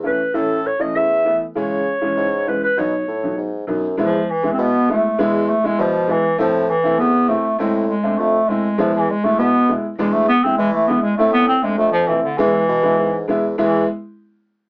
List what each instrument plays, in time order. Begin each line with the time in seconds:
0.03 upright piano E3 A3 C#4, clarinet B4
0.34 bassoon A2, upright piano E3 A3 C#4, clarinet A4
0.67 clarinet C#5
0.79 upright piano E3 A3 C#4, clarinet D#5
0.95 bassoon E2, clarinet E5
1.25 upright piano E3 A3 B3
1.55 bassoon C#3, upright piano E3 G#3 C#4, clarinet C#5
2.01 upright piano E3 G#3 C#4
2.17 bassoon G#2
2.47 upright piano E3 G#3 C#4, clarinet B4
2.63 clarinet B4
2.77 bassoon B2, upright piano F#3 B3 D#4, clarinet C#5
3.08 bassoon A2
3.23 upright piano F#3 B3 D#4
3.38 bassoon G#2
3.67 bassoon F#2, upright piano F#3 B3 D#4
3.97 bassoon E2, clarinet F3, upright piano G#3 B3 E4
4.30 clarinet E3
4.43 upright piano G#3 B3 E4
4.53 clarinet C4
4.58 bassoon B2, clarinet B3
4.89 upright piano G#3 B3 E4, clarinet A3
5.18 bassoon E2, upright piano G#3 B3 E4, clarinet G#3
5.49 clarinet A3
5.64 upright piano G#3 B3 E4, clarinet G#3
5.78 bassoon B2, clarinet F3
6.08 clarinet E3, upright piano G#3 B3 E4
6.38 bassoon A2, clarinet F3, upright piano A3 C4 E4
6.70 clarinet E3
6.83 upright piano A3 C4 E4
7.00 bassoon E2, clarinet B3
7.28 upright piano A3 C4 E4, clarinet A3
7.58 bassoon A2, clarinet G#3, upright piano A3 C4 E4
7.89 clarinet G#3
8.03 upright piano A3 C4 D4
8.18 bassoon F2, clarinet A3
8.49 clarinet G#3, upright piano A3 C4 E4
8.78 bassoon E2, clarinet F3, upright piano G#3 B3 E4
8.95 clarinet E3
9.10 clarinet G#3
9.24 upright piano G#3 B3 E4, clarinet A3
9.39 bassoon B2, clarinet B3
9.69 upright piano G#3 B3 E4
9.98 bassoon E2, clarinet G#3, upright piano G#3 B3 D4
10.13 clarinet A3
10.28 clarinet B3
10.44 upright piano G#3 B3 E4, clarinet C4
10.58 bassoon E3, clarinet G#3
10.72 clarinet A3
10.88 upright piano G#3 B3 E4, clarinet B3
11.02 clarinet G#3
11.17 bassoon A2, clarinet A3, upright piano A3 C4 E4
11.33 clarinet B3
11.48 clarinet C4
11.62 clarinet G#3, upright piano A3 C4 D4
11.78 bassoon F2, clarinet A3
11.92 clarinet F3
12.08 clarinet E3, upright piano A3 C4 E4
12.23 clarinet D3
12.38 bassoon E2, clarinet E3, upright piano G#3 B3 E4
12.68 bassoon B2
12.83 upright piano G#3 B3 E4
12.99 bassoon G#2
13.28 bassoon E2, upright piano G#3 B3 E4
13.57 bassoon E2, clarinet E3, upright piano G#3 B3 E4